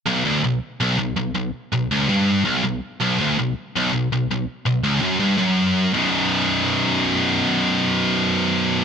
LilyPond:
\new Staff \with { instrumentName = "Distorted electric guitar" } { \clef bass \time 4/4 \key b \minor \tempo 4 = 163 b,,8 d,8 b,,8 r8 b,,8 b,,8 b,,8 b,,8 | r8 b,,8 cis,8 g,4 b,,8 b,,8 r8 | b,,8 d,8 b,,8 r8 b,,8 b,,8 b,,8 b,,8 | r8 b,,8 cis,8 fis,8 g,8 fis,4. |
<b,, fis, b,>1~ | <b,, fis, b,>1 | }